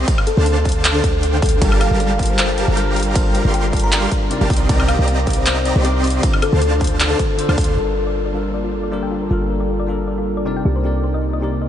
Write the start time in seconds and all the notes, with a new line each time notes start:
0.08 kick, closed hi-hat, ride
0.18 high woodblock
0.27 A4, closed hi-hat
0.37 D2 D3 D4 A4 C5 F5 A5
0.46 closed hi-hat
0.65 kick, closed hi-hat
0.69 closed hi-hat
0.72 closed hi-hat
0.85 clap, closed hi-hat, ride
0.95 A4
1.04 D2 D3 D4 C5 F5 G5, kick, closed hi-hat
1.23 closed hi-hat
1.42 A4, kick, closed hi-hat, open hi-hat
1.49 A4, closed hi-hat
1.60 G1 G3 D4 F4 G4 A4 A#4 F5 A5, kick, closed hi-hat, ride
1.64 A#4
1.72 high woodblock
1.81 F5, closed hi-hat, high woodblock
1.91 G1 G3 G4 A#4 F5 A5
2.00 D5, closed hi-hat
2.17 G3 D4 F4 A#4 A5, kick, closed hi-hat
2.23 closed hi-hat
2.26 closed hi-hat
2.30 C5
2.38 C5, clap, closed hi-hat, ride
2.58 closed hi-hat
2.68 G1 G3 G4 A#4 F5 A#5
2.76 G3 D4 F4 A#4, closed hi-hat
2.96 closed hi-hat, open hi-hat
3.03 closed hi-hat
3.13 G3 D4 F4 A4 A#4 D5, kick, closed hi-hat, ride
3.35 D5, closed hi-hat
3.45 G1 G3 G4 A#4 D5 F5 C6
3.54 G5, closed hi-hat
3.71 G3 D4 F4 A#4 A5, kick, closed hi-hat
3.77 closed hi-hat
3.80 closed hi-hat
3.84 A#5
3.92 clap, closed hi-hat, ride
4.12 kick, closed hi-hat
4.30 C3 C4 D#4 A#4 D5, closed hi-hat
4.41 G1 G3 G4 A#4 F5 A5
4.50 C2 C4 G4 D5 D#5, kick, closed hi-hat, open hi-hat
4.57 closed hi-hat
4.67 C2 C3 C4 D#4 G4 A#4 D5 D#5 A#5, kick, closed hi-hat, ride
4.71 D5
4.80 high woodblock
4.88 F5, closed hi-hat, high woodblock
4.99 C2 C4 G4 D5 D#5 A#5
5.08 D5, closed hi-hat
5.25 C3 C4 D#4 A#4, kick, closed hi-hat
5.29 D6, closed hi-hat
5.33 C5, closed hi-hat
5.46 C5, clap, closed hi-hat, ride
5.65 closed hi-hat
5.76 C2 C4 G4 A#4 D5 D#5 C6
5.84 C3 C4 D#4 A#4 D6, closed hi-hat
6.04 closed hi-hat, open hi-hat
6.10 closed hi-hat
6.21 D3 D4 F4 A4, kick, closed hi-hat, ride
6.33 high woodblock
6.42 A4, closed hi-hat, high woodblock
6.52 D2 D3 D4 A4 C5 F5 A5
6.62 closed hi-hat
6.79 D3 D4 F4 A4, kick, closed hi-hat
6.83 C5, closed hi-hat
6.87 closed hi-hat
7.00 clap, closed hi-hat, ride
7.10 A4
7.19 kick, closed hi-hat
7.38 D3 D4 F4 A4 C5, closed hi-hat
7.49 D2 D3 D4 C5 F5 A5, high woodblock
7.58 D2 D3 A4 C5 C6, kick, closed hi-hat, open hi-hat
7.64 closed hi-hat
7.68 A4
7.75 G1 G3 A#3 D4 F4 A4 A#4 D5 A5
7.96 A#4
8.07 D5
8.26 D5
8.33 G3 D4 F4 A4
8.37 A#4
8.54 D5
8.64 F4
8.83 D5
8.91 G3 D4 F4 A4 A#4 D5
9.03 G5
9.11 F4
9.22 A#4
9.29 G1 G3 D4 F4 A4 A#4
9.50 A#4
9.60 D5
9.80 D5
9.86 G3 D4 F4 A4 A#4
10.08 D5
10.18 F4
10.37 D5
10.45 C3 C4 D#4 A#4 D5
10.57 G5
10.65 C2 C3 A#3 D#4 G4
10.76 C5
10.83 C3 C4 D#4 G4 A#4
10.87 D5
11.04 C5
11.14 D#5
11.33 D#5
11.40 C3 C4 D#4 G4 A#4
11.44 D5
11.62 D#5